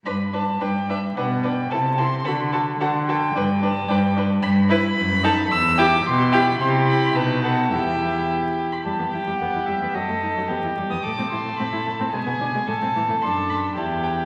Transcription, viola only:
X:1
M:2/4
L:1/16
Q:1/4=110
K:G
V:1 name="Viola"
D2 D2 D2 D2 | D2 D2 E2 E2 | F2 F2 F2 F2 | D2 D2 D2 D2 |
[K:Em] z2 E z3 ^D z | z2 E z3 E z | E4 ^D4 | E6- E z |
G, B, E G, B, E G, B, | F, A, ^D F, B, E G, B, | A, C E A, C E A, C | ^G, B, D G, A, C E, A, |
[K:Dmix] D4 E4 |]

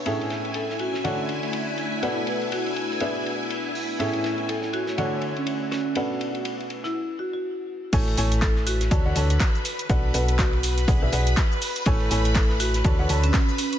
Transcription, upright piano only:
X:1
M:4/4
L:1/16
Q:"Swing 16ths" 1/4=122
K:A
V:1 name="Upright piano"
[A,,CGAe]8 [D,DAcf]8 | [B,,DABf]8 [B,,DGBe]8 | [A,,CGAe]8 [D,DAcf]8 | [B,,DABf]8 z8 |
[A,EAcg]2 [A,EAcg]6 [D,DAca] [D,DAcf] [D,DAca]2 z4 | [B,,DABf]2 [B,,DABf]6 [B,,DGBf] [B,,DGBe] [B,,DGBf]2 z4 | [A,EAcg]2 [A,EAcg]6 [D,DAca] [D,DAcf] [D,DAca]2 z4 |]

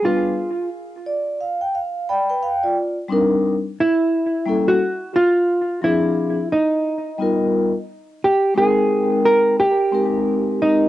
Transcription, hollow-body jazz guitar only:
X:1
M:4/4
L:1/16
Q:"Swing 16ths" 1/4=88
K:Ablyd
V:1 name="Hollow-body jazz guitar"
F4 z12 | z6 =E4- E ^F3 =F2- | F2 =E4 _E8 z2 | G2 A4 B2 G6 E2 |]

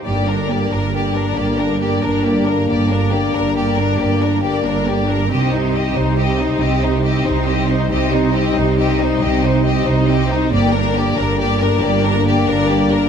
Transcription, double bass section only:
X:1
M:12/8
L:1/8
Q:3/8=92
K:Gm
V:1 name="Double bass section" clef=bass
G,,,3 G,,,3 G,,,3 G,,,3 | G,,,3 G,,,3 G,,,3 G,,,3 | C,,3 C,,3 C,,3 C,,3 | C,,3 C,,3 C,,3 C,,3 |
G,,,3 G,,,3 G,,,3 G,,,3 |]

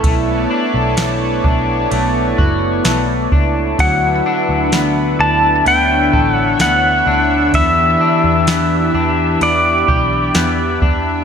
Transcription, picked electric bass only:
X:1
M:4/4
L:1/16
Q:1/4=64
K:D
V:1 name="Picked electric bass" clef=bass
B,,,2 z B,,, B,,,2 B,,,2 B,,,2 F,,,2 B,,,2 C,,2 | D,,2 z D,, D,,2 D,,2 D,,2 A,,,2 D,,2 D,,2 | E,,2 z E,, E,,2 E,,2 E,,2 B,,,2 E,,2 E,,2 |]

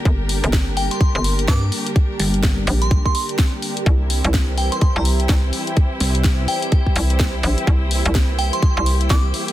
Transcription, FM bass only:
X:1
M:4/4
L:1/16
Q:"Swing 16ths" 1/4=126
K:Cmix
V:1 name="FM bass" clef=bass
G,,,3 G,,,4 z2 G,,,3 G,,2 z2 | z6 B,,,3 z6 z | C,,3 C,,4 z2 C,,3 C,,2 z2 | z8 z2 C,,4 B,,, z |
C,,3 C,,4 z2 C,,3 C,,2 z2 |]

